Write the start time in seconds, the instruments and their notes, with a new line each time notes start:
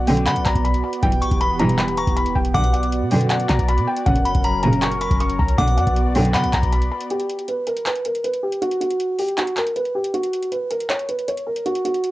Already playing: 808-style bass B1, analog synth pad B3 F#4 D5
0.07 string section B1 F#2 D3, felt piano G5, open hi-hat
0.17 closed hi-hat
0.27 808-style bass D3, felt piano F#5, synth bell B5, clap, closed hi-hat
0.36 808-style bass B1, closed hi-hat
0.45 808-style bass B1, felt piano A#5, kick, clap, closed hi-hat
0.55 808-style bass B1, kick, closed hi-hat
0.65 felt piano B5, closed hi-hat
0.74 closed hi-hat
0.84 felt piano B5
0.93 closed hi-hat
1.03 808-style bass E1, string section B1 G2 E3, analog synth pad E3 G4, felt piano G5, kick, closed hi-hat
1.12 closed hi-hat
1.22 808-style bass B1, synth bell C#6, closed hi-hat
1.31 808-style bass E1, kick, closed hi-hat
1.41 synth bell B5, felt piano B5, closed hi-hat
1.59 string section B1 G2 E3, felt piano A#5, closed hi-hat
1.69 closed hi-hat
1.79 felt piano B5, clap, closed hi-hat
1.88 closed hi-hat
1.97 felt piano A#5, synth bell C#6, closed hi-hat
2.07 808-style bass E1, kick, closed hi-hat
2.17 felt piano B5, closed hi-hat
2.26 closed hi-hat
2.35 808-style bass E1, felt piano G5, kick
2.45 closed hi-hat
2.54 string section B1 F#2 D3, 808-style bass B1, analog synth pad F#4 D5, felt piano F#5, synth bell D6, kick, closed hi-hat
2.64 closed hi-hat
2.73 felt piano F#5, closed hi-hat
2.83 closed hi-hat
2.92 closed hi-hat
3.02 808-style bass B2
3.11 string section B1 F#2 D3, felt piano G5, open hi-hat
3.21 closed hi-hat
3.30 felt piano F#5, clap, closed hi-hat
3.40 closed hi-hat
3.49 808-style bass B2, felt piano A#5, kick, clap, closed hi-hat
3.59 808-style bass B1, kick, closed hi-hat
3.69 felt piano B5, closed hi-hat
3.78 808-style bass B2, closed hi-hat
3.87 felt piano G5
3.97 closed hi-hat
4.06 808-style bass F#1, string section A#1 F#2 C#3, analog synth pad F#3 C#4 A#4, felt piano F#5, kick, closed hi-hat
4.16 closed hi-hat
4.25 synth bell B5, closed hi-hat
4.35 808-style bass F#1, kick, closed hi-hat
4.44 synth bell A#5, felt piano B5, closed hi-hat
4.63 string section A#1 F#2 C#3, felt piano A#5, closed hi-hat
4.73 closed hi-hat
4.82 felt piano C#6, clap, closed hi-hat
4.92 closed hi-hat
5.01 felt piano B5, synth bell C#6, closed hi-hat
5.11 808-style bass F#1, kick, closed hi-hat
5.20 felt piano C#6, closed hi-hat
5.30 closed hi-hat
5.39 808-style bass C#2, felt piano A#5, kick
5.49 closed hi-hat
5.58 string section B1 F#2 D3, 808-style bass B1, analog synth pad B3 F#4 D5, felt piano F#5, synth bell D6, kick, closed hi-hat
5.68 closed hi-hat
5.77 808-style bass F#2, felt piano F#5, closed hi-hat
5.87 808-style bass B1, kick, closed hi-hat
5.96 closed hi-hat
6.15 string section B1 F#2 D3, felt piano G5, open hi-hat
6.25 closed hi-hat
6.34 808-style bass D3, felt piano F#5, synth bell B5, clap, closed hi-hat
6.44 808-style bass B1, closed hi-hat
6.53 808-style bass B1, felt piano A#5, kick, clap, closed hi-hat
6.63 808-style bass B1, kick, closed hi-hat
6.72 felt piano B5, closed hi-hat
6.82 closed hi-hat
6.91 felt piano B5
7.00 closed hi-hat
7.10 felt piano G4, closed hi-hat
7.20 closed hi-hat
7.29 closed hi-hat
7.39 closed hi-hat
7.48 felt piano B4, closed hi-hat
7.67 felt piano A#4, closed hi-hat
7.77 closed hi-hat
7.86 felt piano B4, clap, closed hi-hat
7.95 closed hi-hat
8.05 felt piano A#4, closed hi-hat
8.15 closed hi-hat
8.24 felt piano B4, closed hi-hat
8.33 closed hi-hat
8.43 felt piano G4
8.52 closed hi-hat
8.62 felt piano F#4, closed hi-hat
8.71 closed hi-hat
8.81 felt piano F#4, closed hi-hat
8.91 closed hi-hat
9.00 closed hi-hat
9.19 felt piano G4, open hi-hat
9.28 closed hi-hat
9.38 felt piano F#4, clap, closed hi-hat
9.47 closed hi-hat
9.57 felt piano A#4, clap, closed hi-hat
9.67 closed hi-hat
9.76 felt piano B4, closed hi-hat
9.85 closed hi-hat
9.95 felt piano G4
10.04 closed hi-hat
10.14 felt piano F#4, closed hi-hat
10.23 closed hi-hat
10.33 closed hi-hat
10.42 closed hi-hat
10.52 felt piano B4, closed hi-hat
10.71 felt piano A#4, closed hi-hat
10.80 closed hi-hat
10.90 felt piano C#5, clap, closed hi-hat
10.99 closed hi-hat
11.09 felt piano B4, closed hi-hat
11.19 closed hi-hat
11.28 felt piano C#5, closed hi-hat
11.37 closed hi-hat
11.47 felt piano A#4
11.56 closed hi-hat
11.66 felt piano F#4, closed hi-hat
11.75 closed hi-hat
11.85 felt piano F#4, closed hi-hat
11.94 closed hi-hat
12.04 closed hi-hat